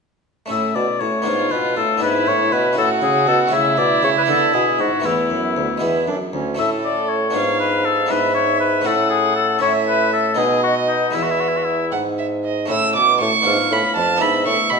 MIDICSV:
0, 0, Header, 1, 5, 480
1, 0, Start_track
1, 0, Key_signature, 3, "major"
1, 0, Tempo, 506329
1, 480, Time_signature, 6, 3, 24, 8
1, 9111, Key_signature, 4, "major"
1, 9115, Tempo, 515021
1, 11995, Tempo, 503356
1, 13989, End_track
2, 0, Start_track
2, 0, Title_t, "Violin"
2, 0, Program_c, 0, 40
2, 1194, Note_on_c, 0, 65, 55
2, 1879, Note_off_c, 0, 65, 0
2, 1925, Note_on_c, 0, 64, 67
2, 2622, Note_off_c, 0, 64, 0
2, 2635, Note_on_c, 0, 66, 72
2, 3346, Note_on_c, 0, 64, 82
2, 3361, Note_off_c, 0, 66, 0
2, 4780, Note_off_c, 0, 64, 0
2, 4786, Note_on_c, 0, 59, 51
2, 5454, Note_off_c, 0, 59, 0
2, 5521, Note_on_c, 0, 64, 51
2, 5745, Note_off_c, 0, 64, 0
2, 5762, Note_on_c, 0, 62, 48
2, 5838, Note_off_c, 0, 62, 0
2, 6013, Note_on_c, 0, 61, 41
2, 6242, Note_off_c, 0, 61, 0
2, 6248, Note_on_c, 0, 69, 56
2, 6929, Note_off_c, 0, 69, 0
2, 6977, Note_on_c, 0, 77, 57
2, 7675, Note_off_c, 0, 77, 0
2, 7692, Note_on_c, 0, 76, 67
2, 8398, Note_on_c, 0, 78, 65
2, 8412, Note_off_c, 0, 76, 0
2, 9108, Note_off_c, 0, 78, 0
2, 9113, Note_on_c, 0, 76, 76
2, 9805, Note_off_c, 0, 76, 0
2, 9810, Note_on_c, 0, 75, 68
2, 10519, Note_off_c, 0, 75, 0
2, 10535, Note_on_c, 0, 76, 57
2, 11199, Note_off_c, 0, 76, 0
2, 11260, Note_on_c, 0, 78, 57
2, 11334, Note_off_c, 0, 78, 0
2, 11508, Note_on_c, 0, 76, 44
2, 11583, Note_off_c, 0, 76, 0
2, 11753, Note_on_c, 0, 75, 48
2, 11987, Note_off_c, 0, 75, 0
2, 11992, Note_on_c, 0, 88, 84
2, 12217, Note_off_c, 0, 88, 0
2, 12235, Note_on_c, 0, 86, 72
2, 12467, Note_off_c, 0, 86, 0
2, 12473, Note_on_c, 0, 85, 77
2, 12967, Note_on_c, 0, 83, 75
2, 12982, Note_off_c, 0, 85, 0
2, 13187, Note_off_c, 0, 83, 0
2, 13193, Note_on_c, 0, 81, 74
2, 13438, Note_on_c, 0, 83, 77
2, 13452, Note_off_c, 0, 81, 0
2, 13669, Note_off_c, 0, 83, 0
2, 13674, Note_on_c, 0, 85, 69
2, 13898, Note_on_c, 0, 83, 70
2, 13912, Note_off_c, 0, 85, 0
2, 13989, Note_off_c, 0, 83, 0
2, 13989, End_track
3, 0, Start_track
3, 0, Title_t, "Oboe"
3, 0, Program_c, 1, 68
3, 483, Note_on_c, 1, 76, 68
3, 717, Note_on_c, 1, 74, 65
3, 731, Note_off_c, 1, 76, 0
3, 952, Note_on_c, 1, 73, 68
3, 966, Note_off_c, 1, 74, 0
3, 1435, Note_on_c, 1, 71, 64
3, 1449, Note_off_c, 1, 73, 0
3, 1669, Note_off_c, 1, 71, 0
3, 1674, Note_on_c, 1, 69, 72
3, 1912, Note_off_c, 1, 69, 0
3, 1921, Note_on_c, 1, 71, 80
3, 2162, Note_on_c, 1, 73, 78
3, 2176, Note_off_c, 1, 71, 0
3, 2391, Note_on_c, 1, 71, 74
3, 2405, Note_off_c, 1, 73, 0
3, 2631, Note_off_c, 1, 71, 0
3, 2639, Note_on_c, 1, 69, 77
3, 2745, Note_off_c, 1, 69, 0
3, 2869, Note_on_c, 1, 68, 71
3, 3102, Note_off_c, 1, 68, 0
3, 3113, Note_on_c, 1, 69, 77
3, 3219, Note_off_c, 1, 69, 0
3, 3351, Note_on_c, 1, 76, 84
3, 3589, Note_on_c, 1, 74, 83
3, 3603, Note_off_c, 1, 76, 0
3, 3824, Note_off_c, 1, 74, 0
3, 3836, Note_on_c, 1, 73, 70
3, 3887, Note_off_c, 1, 73, 0
3, 3961, Note_on_c, 1, 71, 69
3, 4011, Note_off_c, 1, 71, 0
3, 4078, Note_on_c, 1, 69, 72
3, 4311, Note_on_c, 1, 68, 64
3, 4325, Note_off_c, 1, 69, 0
3, 4554, Note_on_c, 1, 66, 70
3, 4568, Note_off_c, 1, 68, 0
3, 4793, Note_on_c, 1, 64, 59
3, 4807, Note_off_c, 1, 66, 0
3, 5520, Note_off_c, 1, 64, 0
3, 6249, Note_on_c, 1, 76, 72
3, 6357, Note_off_c, 1, 76, 0
3, 6490, Note_on_c, 1, 74, 69
3, 6722, Note_on_c, 1, 73, 73
3, 6736, Note_off_c, 1, 74, 0
3, 7195, Note_off_c, 1, 73, 0
3, 7201, Note_on_c, 1, 71, 74
3, 7445, Note_on_c, 1, 69, 73
3, 7459, Note_off_c, 1, 71, 0
3, 7689, Note_on_c, 1, 71, 76
3, 7703, Note_off_c, 1, 69, 0
3, 7906, Note_off_c, 1, 71, 0
3, 7912, Note_on_c, 1, 73, 79
3, 8149, Note_off_c, 1, 73, 0
3, 8154, Note_on_c, 1, 71, 74
3, 8406, Note_on_c, 1, 69, 78
3, 8420, Note_off_c, 1, 71, 0
3, 8625, Note_off_c, 1, 69, 0
3, 8630, Note_on_c, 1, 68, 78
3, 8866, Note_off_c, 1, 68, 0
3, 8874, Note_on_c, 1, 69, 77
3, 9108, Note_off_c, 1, 69, 0
3, 9119, Note_on_c, 1, 73, 88
3, 9224, Note_off_c, 1, 73, 0
3, 9362, Note_on_c, 1, 71, 87
3, 9587, Note_off_c, 1, 71, 0
3, 9599, Note_on_c, 1, 69, 76
3, 9833, Note_on_c, 1, 68, 73
3, 9847, Note_off_c, 1, 69, 0
3, 10065, Note_off_c, 1, 68, 0
3, 10068, Note_on_c, 1, 66, 76
3, 10174, Note_off_c, 1, 66, 0
3, 10296, Note_on_c, 1, 63, 67
3, 10548, Note_on_c, 1, 64, 53
3, 10562, Note_off_c, 1, 63, 0
3, 10618, Note_on_c, 1, 66, 52
3, 10632, Note_off_c, 1, 64, 0
3, 10693, Note_on_c, 1, 64, 54
3, 10707, Note_off_c, 1, 66, 0
3, 10780, Note_on_c, 1, 66, 50
3, 10794, Note_off_c, 1, 64, 0
3, 10857, Note_on_c, 1, 64, 52
3, 10871, Note_off_c, 1, 66, 0
3, 10934, Note_on_c, 1, 66, 52
3, 10948, Note_off_c, 1, 64, 0
3, 11008, Note_on_c, 1, 64, 56
3, 11022, Note_off_c, 1, 66, 0
3, 11267, Note_off_c, 1, 64, 0
3, 12720, Note_on_c, 1, 77, 70
3, 13398, Note_off_c, 1, 77, 0
3, 13425, Note_on_c, 1, 76, 69
3, 13989, Note_off_c, 1, 76, 0
3, 13989, End_track
4, 0, Start_track
4, 0, Title_t, "Harpsichord"
4, 0, Program_c, 2, 6
4, 435, Note_on_c, 2, 57, 34
4, 450, Note_on_c, 2, 61, 37
4, 465, Note_on_c, 2, 64, 35
4, 478, Note_on_c, 2, 45, 41
4, 696, Note_off_c, 2, 45, 0
4, 719, Note_on_c, 2, 47, 38
4, 937, Note_off_c, 2, 47, 0
4, 957, Note_on_c, 2, 45, 44
4, 1157, Note_off_c, 2, 57, 0
4, 1157, Note_on_c, 2, 59, 41
4, 1165, Note_off_c, 2, 61, 0
4, 1169, Note_on_c, 2, 62, 38
4, 1172, Note_off_c, 2, 64, 0
4, 1175, Note_off_c, 2, 45, 0
4, 1188, Note_on_c, 2, 65, 42
4, 1199, Note_on_c, 2, 44, 49
4, 1415, Note_off_c, 2, 44, 0
4, 1433, Note_on_c, 2, 47, 36
4, 1652, Note_off_c, 2, 47, 0
4, 1674, Note_on_c, 2, 45, 43
4, 1860, Note_off_c, 2, 59, 0
4, 1871, Note_on_c, 2, 59, 39
4, 1873, Note_off_c, 2, 62, 0
4, 1885, Note_on_c, 2, 62, 41
4, 1892, Note_off_c, 2, 65, 0
4, 1893, Note_off_c, 2, 45, 0
4, 1900, Note_on_c, 2, 64, 44
4, 1914, Note_on_c, 2, 44, 46
4, 2132, Note_off_c, 2, 44, 0
4, 2151, Note_on_c, 2, 45, 48
4, 2369, Note_off_c, 2, 45, 0
4, 2392, Note_on_c, 2, 47, 49
4, 2587, Note_off_c, 2, 59, 0
4, 2587, Note_on_c, 2, 61, 47
4, 2590, Note_off_c, 2, 64, 0
4, 2594, Note_off_c, 2, 62, 0
4, 2602, Note_on_c, 2, 64, 50
4, 2607, Note_off_c, 2, 47, 0
4, 2632, Note_on_c, 2, 45, 53
4, 2846, Note_off_c, 2, 45, 0
4, 2858, Note_on_c, 2, 49, 47
4, 3077, Note_off_c, 2, 49, 0
4, 3103, Note_on_c, 2, 47, 49
4, 3294, Note_on_c, 2, 57, 47
4, 3295, Note_off_c, 2, 61, 0
4, 3307, Note_off_c, 2, 64, 0
4, 3307, Note_on_c, 2, 61, 48
4, 3318, Note_off_c, 2, 47, 0
4, 3323, Note_on_c, 2, 64, 44
4, 3337, Note_on_c, 2, 49, 55
4, 3554, Note_off_c, 2, 49, 0
4, 3578, Note_on_c, 2, 47, 50
4, 3795, Note_off_c, 2, 47, 0
4, 3817, Note_on_c, 2, 49, 55
4, 4014, Note_off_c, 2, 57, 0
4, 4020, Note_off_c, 2, 61, 0
4, 4029, Note_off_c, 2, 64, 0
4, 4034, Note_off_c, 2, 49, 0
4, 4036, Note_on_c, 2, 59, 47
4, 4049, Note_on_c, 2, 62, 46
4, 4060, Note_on_c, 2, 50, 53
4, 4276, Note_off_c, 2, 50, 0
4, 4300, Note_on_c, 2, 47, 42
4, 4518, Note_off_c, 2, 47, 0
4, 4539, Note_on_c, 2, 44, 42
4, 4740, Note_on_c, 2, 57, 35
4, 4742, Note_off_c, 2, 59, 0
4, 4754, Note_on_c, 2, 59, 36
4, 4758, Note_off_c, 2, 62, 0
4, 4759, Note_off_c, 2, 44, 0
4, 4772, Note_on_c, 2, 64, 34
4, 4783, Note_on_c, 2, 40, 39
4, 4999, Note_off_c, 2, 57, 0
4, 5003, Note_off_c, 2, 40, 0
4, 5006, Note_off_c, 2, 59, 0
4, 5028, Note_on_c, 2, 42, 43
4, 5248, Note_off_c, 2, 42, 0
4, 5276, Note_on_c, 2, 38, 39
4, 5474, Note_on_c, 2, 56, 39
4, 5487, Note_off_c, 2, 64, 0
4, 5491, Note_on_c, 2, 59, 35
4, 5493, Note_off_c, 2, 38, 0
4, 5503, Note_on_c, 2, 64, 36
4, 5516, Note_on_c, 2, 40, 38
4, 5730, Note_off_c, 2, 56, 0
4, 5735, Note_off_c, 2, 40, 0
4, 5739, Note_off_c, 2, 59, 0
4, 5760, Note_on_c, 2, 42, 34
4, 5979, Note_off_c, 2, 42, 0
4, 6005, Note_on_c, 2, 38, 38
4, 6205, Note_on_c, 2, 57, 38
4, 6218, Note_off_c, 2, 64, 0
4, 6220, Note_on_c, 2, 61, 37
4, 6222, Note_off_c, 2, 38, 0
4, 6232, Note_on_c, 2, 64, 39
4, 6246, Note_on_c, 2, 45, 43
4, 6923, Note_off_c, 2, 57, 0
4, 6923, Note_on_c, 2, 59, 42
4, 6928, Note_off_c, 2, 45, 0
4, 6931, Note_off_c, 2, 61, 0
4, 6937, Note_off_c, 2, 64, 0
4, 6938, Note_on_c, 2, 62, 40
4, 6953, Note_on_c, 2, 65, 43
4, 6968, Note_on_c, 2, 44, 44
4, 7632, Note_off_c, 2, 59, 0
4, 7644, Note_on_c, 2, 59, 40
4, 7646, Note_off_c, 2, 44, 0
4, 7647, Note_off_c, 2, 62, 0
4, 7655, Note_off_c, 2, 65, 0
4, 7659, Note_on_c, 2, 62, 41
4, 7670, Note_on_c, 2, 64, 41
4, 7686, Note_on_c, 2, 44, 49
4, 8354, Note_off_c, 2, 59, 0
4, 8356, Note_on_c, 2, 57, 52
4, 8359, Note_off_c, 2, 44, 0
4, 8362, Note_off_c, 2, 62, 0
4, 8368, Note_off_c, 2, 64, 0
4, 8369, Note_on_c, 2, 61, 49
4, 8383, Note_on_c, 2, 64, 48
4, 8397, Note_on_c, 2, 45, 54
4, 9070, Note_off_c, 2, 57, 0
4, 9074, Note_off_c, 2, 45, 0
4, 9076, Note_off_c, 2, 61, 0
4, 9083, Note_off_c, 2, 64, 0
4, 9089, Note_on_c, 2, 61, 45
4, 9104, Note_on_c, 2, 64, 46
4, 9119, Note_on_c, 2, 45, 48
4, 9787, Note_off_c, 2, 45, 0
4, 9788, Note_off_c, 2, 61, 0
4, 9796, Note_off_c, 2, 64, 0
4, 9797, Note_on_c, 2, 59, 49
4, 9808, Note_on_c, 2, 63, 51
4, 9823, Note_on_c, 2, 47, 54
4, 10502, Note_off_c, 2, 47, 0
4, 10503, Note_on_c, 2, 56, 36
4, 10505, Note_off_c, 2, 59, 0
4, 10510, Note_off_c, 2, 63, 0
4, 10516, Note_on_c, 2, 59, 39
4, 10530, Note_on_c, 2, 64, 39
4, 10548, Note_on_c, 2, 40, 42
4, 11231, Note_off_c, 2, 40, 0
4, 11264, Note_on_c, 2, 44, 45
4, 11935, Note_off_c, 2, 56, 0
4, 11942, Note_off_c, 2, 59, 0
4, 11949, Note_off_c, 2, 64, 0
4, 11949, Note_on_c, 2, 57, 45
4, 11954, Note_off_c, 2, 44, 0
4, 11965, Note_on_c, 2, 61, 43
4, 11978, Note_on_c, 2, 64, 42
4, 11990, Note_on_c, 2, 45, 47
4, 12209, Note_off_c, 2, 45, 0
4, 12226, Note_on_c, 2, 47, 47
4, 12447, Note_off_c, 2, 47, 0
4, 12473, Note_on_c, 2, 45, 48
4, 12669, Note_on_c, 2, 59, 43
4, 12673, Note_off_c, 2, 57, 0
4, 12681, Note_off_c, 2, 61, 0
4, 12685, Note_on_c, 2, 62, 42
4, 12688, Note_off_c, 2, 64, 0
4, 12691, Note_off_c, 2, 45, 0
4, 12698, Note_on_c, 2, 65, 46
4, 12713, Note_on_c, 2, 44, 46
4, 12931, Note_off_c, 2, 44, 0
4, 12954, Note_on_c, 2, 45, 47
4, 13170, Note_off_c, 2, 45, 0
4, 13191, Note_on_c, 2, 41, 48
4, 13374, Note_off_c, 2, 59, 0
4, 13386, Note_on_c, 2, 59, 40
4, 13390, Note_off_c, 2, 62, 0
4, 13401, Note_on_c, 2, 62, 41
4, 13404, Note_off_c, 2, 65, 0
4, 13408, Note_off_c, 2, 41, 0
4, 13416, Note_on_c, 2, 64, 43
4, 13429, Note_on_c, 2, 44, 47
4, 13646, Note_off_c, 2, 44, 0
4, 13667, Note_on_c, 2, 45, 50
4, 13884, Note_off_c, 2, 45, 0
4, 13908, Note_on_c, 2, 47, 52
4, 13989, Note_off_c, 2, 47, 0
4, 13989, Note_off_c, 2, 59, 0
4, 13989, Note_off_c, 2, 62, 0
4, 13989, Note_off_c, 2, 64, 0
4, 13989, End_track
5, 0, Start_track
5, 0, Title_t, "Bassoon"
5, 0, Program_c, 3, 70
5, 478, Note_on_c, 3, 45, 51
5, 704, Note_off_c, 3, 45, 0
5, 716, Note_on_c, 3, 47, 48
5, 826, Note_off_c, 3, 47, 0
5, 962, Note_on_c, 3, 45, 48
5, 1206, Note_on_c, 3, 44, 54
5, 1220, Note_off_c, 3, 45, 0
5, 1438, Note_off_c, 3, 44, 0
5, 1444, Note_on_c, 3, 47, 50
5, 1674, Note_off_c, 3, 47, 0
5, 1680, Note_on_c, 3, 45, 56
5, 1921, Note_on_c, 3, 44, 62
5, 1936, Note_off_c, 3, 45, 0
5, 2154, Note_off_c, 3, 44, 0
5, 2159, Note_on_c, 3, 45, 56
5, 2399, Note_on_c, 3, 47, 60
5, 2414, Note_off_c, 3, 45, 0
5, 2630, Note_off_c, 3, 47, 0
5, 2635, Note_on_c, 3, 45, 61
5, 2863, Note_off_c, 3, 45, 0
5, 2869, Note_on_c, 3, 49, 67
5, 3108, Note_on_c, 3, 47, 64
5, 3122, Note_off_c, 3, 49, 0
5, 3345, Note_on_c, 3, 49, 64
5, 3359, Note_off_c, 3, 47, 0
5, 3578, Note_off_c, 3, 49, 0
5, 3584, Note_on_c, 3, 47, 55
5, 3691, Note_off_c, 3, 47, 0
5, 3823, Note_on_c, 3, 49, 62
5, 3930, Note_off_c, 3, 49, 0
5, 4065, Note_on_c, 3, 50, 57
5, 4298, Note_off_c, 3, 50, 0
5, 4309, Note_on_c, 3, 47, 56
5, 4416, Note_off_c, 3, 47, 0
5, 4546, Note_on_c, 3, 44, 51
5, 4655, Note_off_c, 3, 44, 0
5, 4787, Note_on_c, 3, 40, 51
5, 5025, Note_off_c, 3, 40, 0
5, 5036, Note_on_c, 3, 42, 42
5, 5271, Note_off_c, 3, 42, 0
5, 5276, Note_on_c, 3, 38, 44
5, 5385, Note_off_c, 3, 38, 0
5, 5517, Note_on_c, 3, 40, 51
5, 5755, Note_off_c, 3, 40, 0
5, 5765, Note_on_c, 3, 42, 48
5, 5873, Note_off_c, 3, 42, 0
5, 6011, Note_on_c, 3, 38, 45
5, 6245, Note_off_c, 3, 38, 0
5, 6260, Note_on_c, 3, 45, 59
5, 6973, Note_on_c, 3, 44, 57
5, 6988, Note_off_c, 3, 45, 0
5, 7680, Note_off_c, 3, 44, 0
5, 7686, Note_on_c, 3, 44, 58
5, 8383, Note_off_c, 3, 44, 0
5, 8399, Note_on_c, 3, 45, 59
5, 9099, Note_off_c, 3, 45, 0
5, 9113, Note_on_c, 3, 45, 65
5, 9807, Note_off_c, 3, 45, 0
5, 9824, Note_on_c, 3, 47, 69
5, 10526, Note_off_c, 3, 47, 0
5, 10540, Note_on_c, 3, 40, 56
5, 11249, Note_off_c, 3, 40, 0
5, 11266, Note_on_c, 3, 44, 58
5, 11977, Note_off_c, 3, 44, 0
5, 11993, Note_on_c, 3, 45, 59
5, 12217, Note_off_c, 3, 45, 0
5, 12235, Note_on_c, 3, 47, 52
5, 12471, Note_off_c, 3, 47, 0
5, 12481, Note_on_c, 3, 45, 60
5, 12588, Note_off_c, 3, 45, 0
5, 12717, Note_on_c, 3, 44, 60
5, 12825, Note_off_c, 3, 44, 0
5, 12954, Note_on_c, 3, 45, 57
5, 13062, Note_off_c, 3, 45, 0
5, 13200, Note_on_c, 3, 41, 61
5, 13432, Note_off_c, 3, 41, 0
5, 13440, Note_on_c, 3, 44, 62
5, 13667, Note_off_c, 3, 44, 0
5, 13672, Note_on_c, 3, 45, 55
5, 13780, Note_off_c, 3, 45, 0
5, 13915, Note_on_c, 3, 47, 60
5, 13989, Note_off_c, 3, 47, 0
5, 13989, End_track
0, 0, End_of_file